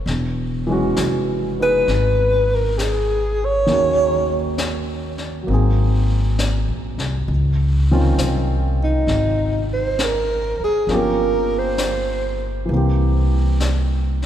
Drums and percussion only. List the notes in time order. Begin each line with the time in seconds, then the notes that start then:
0.07 brush sweep, snare
0.96 snare, hi-hat pedal
1.88 brush sweep, snare
2.79 snare, hi-hat pedal
3.67 brush sweep, snare
4.58 snare, hi-hat pedal
5.18 snare
5.49 brush sweep
6.39 snare, hi-hat pedal
6.98 snare
7.29 brush sweep
8.18 snare, hi-hat pedal
9.08 brush sweep, snare
9.99 snare, hi-hat pedal
10.89 brush sweep, snare
11.78 snare, hi-hat pedal
12.69 brush sweep
13.60 snare, hi-hat pedal
14.22 snare